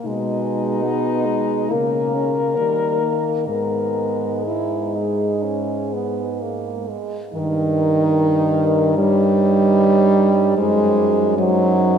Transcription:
0.05 B2 G#3 D#4
0.83 B3
1.25 G#3
1.70 C#3 A#3 A#4
2.14 C#4
2.57 D#3 G3 A#3
3.02 A#3
3.47 G#2 G#3 B3 A#4
4.45 E4 G#4
4.96 D#4
5.44 C#4
5.93 B3
6.41 A#3
6.90 G#3
7.33 G2 D#3 D#4 A#4
8.98 G3 D#4 C#5
10.57 F#2 G#3 D#4 C5
11.38 F#3 D#4 C5

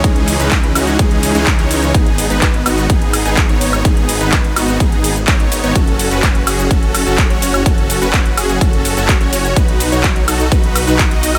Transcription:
0.04 C#2 E3 G#3 C#4 D#4 G#4, kick, closed hi-hat, ride, shaker
0.16 closed hi-hat
0.28 open hi-hat, ride, shaker
0.40 C#2 E3 G#3 C#4 D#4 B4, closed hi-hat, shaker
0.51 kick, clap, closed hi-hat, ride, shaker
0.63 closed hi-hat
0.75 C#2 E3 G#3 C#4 D#4 F#4, open hi-hat, ride, high woodblock, shaker
0.87 closed hi-hat, shaker
0.99 C#2 E3 G#3 C#4 D#4 G#4, kick, closed hi-hat, ride, shaker
1.11 closed hi-hat
1.23 open hi-hat, ride, shaker
1.35 C#2 E3 G#3 C#4 D#4 G#4, closed hi-hat, shaker
1.47 kick, clap, closed hi-hat, ride, shaker
1.59 C#2 E3 G#3 C#4 D#4 C#5, closed hi-hat
1.71 open hi-hat, ride, shaker
1.83 closed hi-hat, shaker
1.94 G#1 B3 D#4, kick, closed hi-hat, ride, shaker
2.06 closed hi-hat
2.18 open hi-hat, ride, shaker
2.30 G#1 B3 D#4 B4, closed hi-hat, shaker
2.42 kick, clap, closed hi-hat, ride, shaker
2.54 closed hi-hat
2.66 G#1 B3 D#4 F#4, open hi-hat, ride, high woodblock, shaker
2.78 closed hi-hat, shaker
2.90 G#1 B3 D#4 G#4, kick, closed hi-hat, ride, shaker
3.02 closed hi-hat
3.13 open hi-hat, ride, high woodblock, shaker
3.25 G#1 B3 D#4 G#4, shaker
3.37 kick, clap, closed hi-hat, ride, shaker
3.49 G#1 B3 D#4 C#5, closed hi-hat
3.61 open hi-hat, ride, shaker
3.73 closed hi-hat, high woodblock, shaker
3.85 G#1 B3 D#4 G#4, kick, closed hi-hat, ride, shaker
3.97 closed hi-hat
4.09 open hi-hat, ride, shaker
4.21 G#1 B3 D#4 B4, closed hi-hat, shaker
4.32 kick, clap, closed hi-hat, ride, shaker
4.45 closed hi-hat
4.56 G#1 B3 D#4 F#4, open hi-hat, ride, high woodblock, shaker
4.68 closed hi-hat, shaker
4.80 G#1 B3 D#4 G#4, kick, closed hi-hat, ride, shaker
4.92 closed hi-hat
5.04 open hi-hat, ride, shaker
5.16 closed hi-hat, shaker
5.28 G#1 B3 D#4 C#5, kick, clap, closed hi-hat, ride, shaker
5.40 closed hi-hat
5.52 open hi-hat, ride, shaker
5.64 G#1 B3 D#4 C#5, closed hi-hat, shaker
5.75 F#1 C#4 F#4 A4, kick, closed hi-hat, ride, shaker
5.87 closed hi-hat
5.99 open hi-hat, ride, shaker
6.11 F#1 C#4 F#4 B4, closed hi-hat, shaker
6.23 kick, clap, closed hi-hat, ride, shaker
6.35 closed hi-hat
6.47 F#1 C#4 F#4 G#4, open hi-hat, ride, high woodblock, shaker
6.59 closed hi-hat, shaker
6.71 F#1 C#4 F#4 A4, kick, closed hi-hat, ride, shaker
6.83 closed hi-hat
6.95 open hi-hat, ride, high woodblock, shaker
7.06 F#1 C#4 F#4 A4, closed hi-hat, shaker
7.18 kick, clap, closed hi-hat, ride, shaker
7.30 F#1 C#4 F#4 C#5, closed hi-hat
7.42 open hi-hat, ride, shaker
7.54 closed hi-hat, high woodblock, shaker
7.66 F#1 C#4 F#4 A4, kick, closed hi-hat, ride, shaker
7.78 closed hi-hat
7.90 open hi-hat, ride, shaker
8.02 F#1 C#4 F#4 B4, closed hi-hat, shaker
8.13 kick, clap, closed hi-hat, ride, shaker
8.26 closed hi-hat
8.37 F#1 C#4 F#4 G#4, open hi-hat, ride, high woodblock, shaker
8.49 closed hi-hat, shaker
8.61 F#1 C#4 F#4 A4, kick, closed hi-hat, ride, shaker
8.73 closed hi-hat
8.85 open hi-hat, ride, shaker
8.97 F#1 C#4 F#4 A4, closed hi-hat, shaker
9.09 kick, clap, closed hi-hat, ride, shaker
9.21 F#1 C#4 F#4 C#5, closed hi-hat
9.33 open hi-hat, ride, shaker
9.45 closed hi-hat, shaker
9.56 B1 D#4 F#4 B4, kick, closed hi-hat, ride, shaker
9.68 closed hi-hat
9.80 open hi-hat, ride, shaker
9.92 B1 D#4 F#4 C#5, closed hi-hat, shaker
10.04 kick, clap, closed hi-hat, ride, shaker
10.16 closed hi-hat
10.28 B1 D#4 F#4 A4, open hi-hat, ride, high woodblock, shaker
10.40 closed hi-hat, shaker
10.52 B1 D#4 F#4 B4, kick, closed hi-hat, ride, shaker
10.64 closed hi-hat
10.76 open hi-hat, ride, high woodblock, shaker
10.87 B1 D#4 F#4 B4, closed hi-hat, shaker
10.99 kick, clap, closed hi-hat, ride, shaker
11.11 B1 D#4 F#4 D#5, closed hi-hat
11.23 open hi-hat, ride, shaker
11.35 closed hi-hat, high woodblock

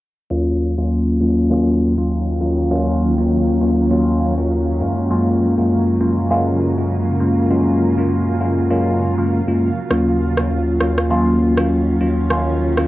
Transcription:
0.30 D#2 D#3 F#3 A#3 C#4 F4
0.78 D#2 F#3 A#3 C#4 F4
1.20 D#2 F#3 A#3 C#4 F4
1.50 D#2 F#3 A#3 C#4 F4
1.98 D#2 F#3 A#3 C#4 F4
2.40 D#2 F#3 A#3 C#4 F4
2.70 D#2 F#3 A#3 C#4 F4
3.18 D#2 F#3 A#3 C#4 F4
3.60 D#2 F#3 A#3 C#4 F4
3.90 D#2 F#3 A#3 C#4 F4
4.38 D#2 F#3 A#3 C#4 F4
4.80 F#2 C#3 G#3 A#3 C#4 F4
5.10 F#2 G#3 A#3 C#4 F4
5.58 F#2 G#3 A#3 C#4 F4
6.00 F#2 G#3 A#3 C#4 F4
6.30 F#2 G#3 A#3 C#4 F4
6.78 F#2 G#3 A#3 C#4 F4
7.20 F#2 G#3 A#3 C#4 F4
7.50 F#2 G#3 A#3 C#4 F4
7.98 F#2 G#3 A#3 C#4 F4
8.40 F#2 G#3 A#3 C#4 F4
8.70 F#2 G#3 A#3 C#4 F4
9.18 F#2 G#3 A#3 C#4 F4
9.48 F#2 G#3 A#3 C#4 F4
9.90 D#2 D#3 F#3 A#3 C#4 F4, cross-stick
10.37 D#2 F#3 A#3 C#4 F4, cross-stick
10.80 D#2 F#3 A#3 C#4 F4, cross-stick
10.98 cross-stick
11.10 D#2 F#3 A#3 C#4 F4
11.57 D#2 F#3 A#3 C#4 F4, cross-stick
12.00 D#2 F#3 A#3 C#4 F4
12.30 D#2 F#3 A#3 C#4 F4, cross-stick
12.77 D#2 F#3 A#3 C#4 F4, cross-stick

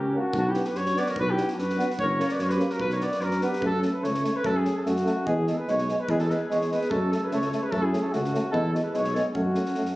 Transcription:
Already playing: C#2 C#4 G4
0.12 A#3 C#4
0.17 D4 F#4
0.33 B1, kick
0.37 D4 F#4
0.48 E4 G4
0.53 B3 D4, snare
0.65 G4 B4, snare
0.74 F#2 C#5, snare
0.79 F#4
0.86 snare
0.93 B3 D4, snare
0.98 B4 D5
1.07 A#4 C#5, snare
1.15 B1, kick
1.20 F#4 B4
1.30 E4 G4
1.35 B3 D4, snare
1.48 F#4, snare
1.53 F#2 D4
1.58 B4, snare
1.63 F#4
1.70 snare
1.77 B3 D4, snare
1.91 snare
1.99 F#1 A#4 C#5, kick
2.18 A#3 C#4 C#5, snare
2.23 A#4
2.29 B4 D5, snare
2.39 F#2 A#4 C#5, snare
2.49 G4 B4, snare
2.58 A#3 C#4, snare
2.70 F#4 A#4, snare
2.80 B1 B4, kick
2.84 F#4
2.90 C#5, snare
2.95 A#4
2.99 B3 D4 D5, snare
3.05 B4
3.12 snare
3.20 F#2 A#4, snare
3.26 F#4
3.31 snare
3.41 B3 D4 B4, snare
3.46 G4
3.53 snare
3.61 F#2 A3 C#4, kick
3.66 A4
3.82 A3 C#4 A4, snare
3.92 B4
4.02 C#2 A3 C#4 C#5, snare
4.15 snare
4.23 A3 C#4 C#5, snare
4.36 B4
4.43 F#2 A3 C#4 A4, kick
4.56 G#4
4.64 A3 C#4, snare
4.77 A4
4.85 F#2 A3 C#4 F#4, snare
4.96 snare
5.05 A3 C#4, snare
5.26 E2 G#3 B3 G#4, kick
5.46 G#3 B3 A4, snare
5.57 B4
5.67 B1 G#3 B3 C#5, snare
5.78 snare
5.88 G#3 B3 C#5, snare
6.00 B4
6.08 E2 G#3 B3 E4 G#4, kick
6.18 F#4 A4, snare
6.27 G#3 B3 G#4 B4, snare
6.46 E2 G#3 G#4
6.51 B3 C#5, snare
6.62 snare
6.70 G#3 B3 G#4 B4, snare
6.82 snare
6.90 F#2 A3 C#4 F#4 A4, kick
7.10 A3 C#4 F#4 A4, snare
7.20 G#4
7.24 B4
7.30 C#2 A3 C#4 A4 C#5, snare
7.42 snare
7.51 A3 C#4 A4 C#5, snare
7.62 G#4 B4
7.71 F#2 A3 C#4 F#4 A4, kick
7.82 E4 G#4
7.93 A3 C#4, snare
8.01 F#4 A4
8.12 C#2 A3 C#4 F#4, snare
8.25 snare
8.32 A3 C#4, snare
8.52 E2 G#3 B3 E4 A4, kick
8.72 G#3 B3 F#4 A4, snare
8.83 G#4 B4
8.92 B1 G#3 B3 G#4, snare
8.96 C#5
9.04 snare
9.13 G#3 B3 A4 C#5, snare
9.33 F#2 A3 C#4 F#4, kick
9.55 A3 C#4, snare
9.66 snare
9.75 F#2 A3 C#4, snare
9.86 snare

